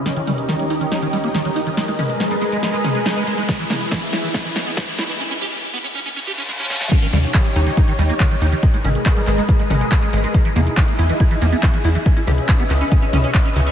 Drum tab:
CC |----------------|----------------|----------------|----------------|
HH |xxoxxxoxxxoxxxox|xxoxxxoxxxoxxxox|xxoxxxoxxxoxxxox|----------------|
CP |----------------|----------------|----------------|----------------|
SD |o---o---o---o---|o---o---o---o---|o-o-o-o-o-o-o-o-|--------------oo|
T2 |--o-------------|--o-------o-----|--o-------------|----------------|
BD |----------------|----------------|o---o---o---o---|----------------|

CC |x---------------|----------------|----------------|----------------|
HH |xxoxxxoxxxoxxxox|xxoxxxoxxxoxxxox|xxoxxxoxxxoxxxox|xxoxxxoxxxoxxxox|
CP |----x-------x---|----x-x-----x---|----x-------x---|----x-x-----x---|
SD |----------------|----------------|----------------|----------------|
T2 |--o-------------|--o-------o-----|--o-------------|--o-------o-----|
BD |o---o---o---o---|o---o---o---o---|o---o---o---o---|o---o---o---o---|